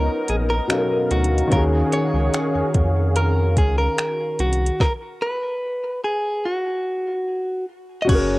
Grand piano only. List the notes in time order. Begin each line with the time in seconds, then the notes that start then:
Already playing: F#3 B3 C#4 D#4 F4 A#4
0.68 B2 F#3 C#4 D#4
0.72 A4 F5
0.79 A#4
1.47 D#3 C#4
1.52 F#4 F5
1.57 G#4
8.05 C#4 F#4
8.12 G#4 A#4